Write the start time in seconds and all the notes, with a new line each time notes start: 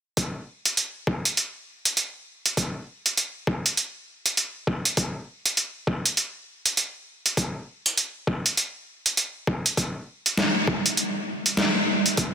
0.17 kick, closed hi-hat
0.65 closed hi-hat
0.77 closed hi-hat
1.07 kick
1.25 closed hi-hat
1.37 closed hi-hat
1.85 closed hi-hat
1.97 closed hi-hat
2.46 closed hi-hat
2.57 kick, closed hi-hat
3.06 closed hi-hat
3.17 closed hi-hat
3.47 kick
3.66 closed hi-hat
3.77 closed hi-hat
4.26 closed hi-hat
4.37 closed hi-hat
4.67 kick
4.85 closed hi-hat
4.97 kick, closed hi-hat
5.46 closed hi-hat
5.57 closed hi-hat
5.87 kick
6.06 closed hi-hat
6.17 closed hi-hat
6.66 closed hi-hat
6.77 closed hi-hat
7.26 closed hi-hat
7.37 kick, closed hi-hat
7.86 closed hi-hat
7.97 closed hi-hat
8.27 kick
8.46 closed hi-hat
8.57 closed hi-hat
9.06 closed hi-hat
9.17 closed hi-hat
9.47 kick
9.66 closed hi-hat
9.77 kick, closed hi-hat
10.26 closed hi-hat
10.37 snare, closed hi-hat
10.67 kick
10.86 closed hi-hat
10.97 closed hi-hat
11.46 closed hi-hat
11.57 snare, closed hi-hat
12.06 closed hi-hat
12.17 kick, closed hi-hat